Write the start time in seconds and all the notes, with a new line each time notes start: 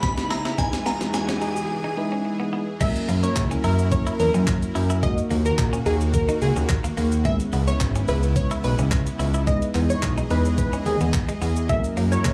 Already playing: C#3 G#3 B3 C#4 E4 B4, riser
0.03 B5, muted clean electric guitar stroke, kick, snare, closed hi-hat
0.18 snare, closed hi-hat
0.30 E4 A#5, snare, open hi-hat
0.45 E4, snare, closed hi-hat
0.58 E2 E3 G#3 D#4 E4 G#4 B4 G#5, kick, snare, closed hi-hat, shaker
0.73 snare, closed hi-hat, shaker
0.86 B3 A#5, snare, open hi-hat, shaker
1.01 G#3 D#4 E4 B4, muted clean electric guitar stroke, snare, closed hi-hat, shaker
1.14 G#5, muted clean electric guitar stroke, snare, closed hi-hat, shaker
1.29 C#4, snare, closed hi-hat, shaker
1.41 D#4, open hi-hat, shaker
1.57 closed hi-hat, shaker
1.84 D#4
1.97 G#3 D#4 E4 B4, muted clean electric guitar stroke
2.12 C#4
2.25 muted clean electric guitar stroke
2.40 B3
2.53 B3
2.81 F#3 G#3 A#3 C#4 E4 A#4 E5, kick, closed hi-hat, crash, shaker
2.96 closed hi-hat, shaker
3.09 F#2 A#3, open hi-hat, shaker
3.23 F#3 A#3 C#4 E4 A#4 C#5, muted clean electric guitar stroke, closed hi-hat, shaker
3.36 C#2, muted clean electric guitar stroke, kick, clap, closed hi-hat, shaker
3.51 C#4, closed hi-hat, shaker
3.64 F#2 E4 A#4, open hi-hat, shaker
3.79 closed hi-hat, shaker
3.92 F#3 A#3 C#4 E4 A#4 C#5, kick, closed hi-hat, shaker
4.07 E4, closed hi-hat, shaker
4.20 E2 A#4, muted clean electric guitar stroke, open hi-hat, shaker
4.34 F#2 C#4, closed hi-hat, shaker
4.47 muted clean electric guitar stroke, kick, clap, closed hi-hat, shaker
4.62 closed hi-hat, shaker
4.75 F#2 E4, open hi-hat, shaker
4.90 E4, closed hi-hat, shaker
5.03 D#3 G#3 A#3 D#4 F#4 D#5, kick, closed hi-hat, shaker
5.18 closed hi-hat, shaker
5.31 D#2 A#3 D#4 F#4, open hi-hat, shaker
5.45 A#4, muted clean electric guitar stroke, closed hi-hat, shaker
5.58 A#1, muted clean electric guitar stroke, kick, clap, closed hi-hat, shaker
5.73 C#4, closed hi-hat, shaker
5.86 D#2 A#3 D#4 F#4 G#4, open hi-hat, shaker
6.01 closed hi-hat, shaker
6.14 A#4, kick, closed hi-hat, shaker
6.29 D#4, closed hi-hat, shaker
6.42 C#2 G#4, muted clean electric guitar stroke, open hi-hat, shaker
6.56 D#2 C#4, closed hi-hat, shaker
6.69 muted clean electric guitar stroke, kick, clap, closed hi-hat, shaker
6.84 A#3, closed hi-hat, shaker
6.97 D#2 A#3, open hi-hat, shaker
7.12 closed hi-hat, shaker
7.25 C#3 G#3 B3 C#4 E4 B4 E5, kick, closed hi-hat, shaker
7.40 closed hi-hat, shaker
7.53 C#2 B3, open hi-hat, shaker
7.67 G#3 B3 C#4 E4 B4 C#5, muted clean electric guitar stroke, closed hi-hat, shaker
7.81 G#1, muted clean electric guitar stroke, kick, clap, closed hi-hat, shaker
7.96 C#4, closed hi-hat, shaker
8.08 C#2 E4 B4, open hi-hat, shaker
8.23 closed hi-hat, shaker
8.36 G#3 B3 C#4 E4 B4 C#5, kick, closed hi-hat, shaker
8.51 E4, closed hi-hat, shaker
8.64 B1 B4, muted clean electric guitar stroke, open hi-hat, shaker
8.79 C#2 C#4, closed hi-hat, shaker
8.92 muted clean electric guitar stroke, kick, clap, closed hi-hat, shaker
9.07 closed hi-hat, shaker
9.19 C#2 E4, open hi-hat, shaker
9.34 E4, closed hi-hat, shaker
9.47 E3 G#3 B3 D#4 E4 G#4 B4 D#5, kick, closed hi-hat, shaker
9.62 closed hi-hat, shaker
9.75 E2 G#3 B3 D#4 E4 B4, clap, open hi-hat, shaker
9.90 C#5, muted clean electric guitar stroke, closed hi-hat, shaker
10.03 B1, muted clean electric guitar stroke, kick, clap, closed hi-hat, shaker
10.18 D#4, closed hi-hat, shaker
10.30 E2 G#3 B3 D#4 E4 B4, open hi-hat, shaker
10.45 closed hi-hat, shaker
10.58 B4, kick, closed hi-hat, shaker
10.73 C#4, closed hi-hat, shaker
10.86 D#2 G#4, muted clean electric guitar stroke, open hi-hat, shaker
11.01 E2 B3, closed hi-hat, shaker
11.14 muted clean electric guitar stroke, kick, clap, closed hi-hat, shaker
11.29 G#3, closed hi-hat, shaker
11.41 E2 B3, open hi-hat, shaker
11.56 closed hi-hat, shaker
11.69 F#3 G#3 A#3 C#4 E4 A#4 E5, kick, closed hi-hat, shaker
11.84 closed hi-hat, shaker
11.97 F#2 A#3, open hi-hat, shaker
12.12 F#3 A#3 C#4 E4 A#4 C#5, muted clean electric guitar stroke, closed hi-hat, shaker
12.25 C#2, muted clean electric guitar stroke, kick, clap, closed hi-hat, shaker